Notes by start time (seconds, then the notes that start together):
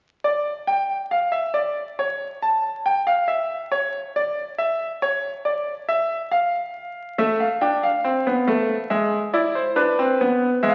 0.24 D5
0.67 G5
1.11 F5
1.32 E5
1.54 D5
1.99 C#5
2.42 A5
2.86 G5
3.07 F5
3.28 E5
3.72 C#5
4.16 D5
4.58 E5
5.02 C#5
5.45 D5
5.88 E5
6.31 F5
7.18 A3 E5
7.40 F5
7.61 D4 G5
7.83 F5
8.04 C4
8.27 B3
8.48 A3
8.90 G#3 E5
9.33 E4 D5
9.55 C5
9.76 D4 B4
9.99 C4
10.21 B3
10.63 G#3 E5
10.70 F5